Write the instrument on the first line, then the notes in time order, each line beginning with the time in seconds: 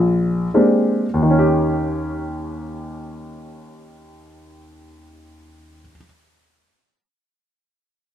grand piano
Already playing: A#1
0.54 G#3 A#3 C4 D4 G4
1.14 D#2
1.23 D#3
1.30 C#4
1.39 G4